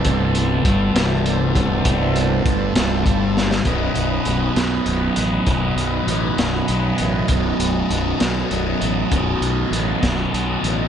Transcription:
<<
  \new Staff \with { instrumentName = "Transistor combo organ" } { \time 6/8 \tempo 4. = 66 << { <g a e' c''>2.~ | <g a e' c''>2. | <fis b dis' dis''>2.~ | <fis b dis' dis''>2.~ |
<fis b dis' dis''>2.~ | <fis b dis' dis''>2. | } \\ { a'2.~ | a'2. | b'2.~ | b'2. |
a'2.~ | a'2. | } >> }
  \new Staff \with { instrumentName = "Harmonium" } { \clef bass \time 6/8 b,2.~ | b,2. | r2. | r2. |
r2. | r2. | }
  \new Staff \with { instrumentName = "Distorted electric guitar" } { \clef bass \time 6/8 c,4 g,8 c,4 c,8 | c,4 g,8 c,8 g,4 | <b,, fis, b,>4 <b,, fis, b,>8 <b,, fis, b,>8 <b,, fis, b,>4 | <b,, fis, b,>4 <b,, fis, b,>8 <b,, fis, b,>8 <b,, fis, b,>4 |
<b,, fis, b,>4 <b,, fis, b,>8 <b,, fis, b,>8 <b,, fis, b,>4 | <b,, fis, b,>4 <b,, fis, b,>8 <b,, fis, b,>8 <b,, fis, b,>4 | }
  \new Staff \with { instrumentName = "Fingered electric bass" } { \clef bass \time 6/8 c,,4 g,,8 c,,4 c,,8 | c,,4 g,,8 c,,8 g,,4 | b,,,8 b,,,8 b,,,8 b,,8 b,,,8 a,,8 | b,,,8 b,,8 a,,8 b,,,8 b,,8 a,,8 |
b,,,8 b,,,8 b,,,8 b,,8 b,,,8 a,,8 | b,,,8 b,,8 a,,8 b,,,8 b,,8 a,,8 | }
  \new DrumStaff \with { instrumentName = "Drums" } \drummode { \time 6/8 <hh bd>8 hh8 <hh bd>8 <hh sn>8 hh8 <hh bd>8 | <hh bd>8 hh8 <hh bd>8 <hh sn>8 <hh bd>8 sn16 sn16 | <hh bd>8 hh8 hh8 <hh sn>8 hh8 hh8 | <hh bd>8 hh8 hh8 <hh sn>8 hh8 hh8 |
<hh bd>8 hh8 hh8 <hh sn>8 hh8 hh8 | <hh bd>8 hh8 hh8 <hh bd sn>8 hh8 hh8 | }
>>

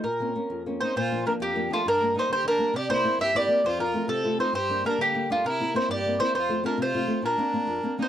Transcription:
<<
  \new Staff \with { instrumentName = "Mandolin" } { \time 6/8 \key bes \minor \tempo 4. = 134 bes'2 r8 c''8 | \key bes \major c''4 bes'8 g'4 f'8 | bes'4 c''8 c''8 bes'4 | d''8 c''4 e''8 d''4 |
c''8 bes'4 a'4 c''8 | c''4 bes'8 g'4 f'8 | bes'4 c''8 d''4 c''8 | c''4 bes'8 c''4. |
bes'2~ bes'8 c''8 | }
  \new Staff \with { instrumentName = "Fiddle" } { \time 6/8 \key bes \minor r2 r8 ees'8 | \key bes \major f'4 d'8 bes4 a8 | d'4 ees'8 g'8 d'4 | g'8 e'4 g'8 g'4 |
f'8 f'4 c'4 ees'8 | g'4 d'8 bes4 a8 | e'4 e'8 g'4 e'8 | f'4 d'8 f'4. |
d'2~ d'8 ees'8 | }
  \new Staff \with { instrumentName = "Nylon-string guitar" } { \time 6/8 \key bes \minor bes,8 <bes c' des'>8 <bes c' des'>8 f,8 <bes c' des'>8 <bes c' des'>8 | \key bes \major bes,8 <f bes d'>8 <f bes d'>8 f,8 <f bes d'>8 <f bes d'>8 | g,8 <g bes d'>8 <g bes d'>8 d8 <g bes d'>8 <g bes d'>8 | c8 <bes c' e'>8 <bes c' e'>8 g,8 <bes c' e'>8 <bes c' e'>8 |
f,8 <f c' f'>8 <a c' f'>8 c8 <a c' f'>8 <a c' f'>8 | g,8 <g bes d'>8 <g bes d'>8 d8 <g bes d'>8 <g bes d'>8 | c8 <bes c' e'>8 <bes c' e'>8 g,8 <bes c' e'>8 <bes c' e'>8 | f,8 <a c' f'>8 <a c' f'>8 c8 <a c' f'>8 <a c' f'>8 |
bes,8 <bes c' d'>8 <bes c' d'>8 f,8 <bes c' d'>8 <bes c' d'>8 | }
>>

